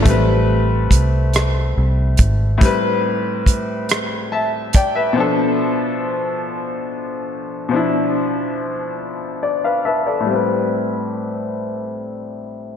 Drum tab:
HH |x-xx-x|x-xx-x|------|------|
SD |---r--|---r--|------|------|
BD |o-o--o|o-o--o|------|------|

HH |------|
SD |------|
BD |------|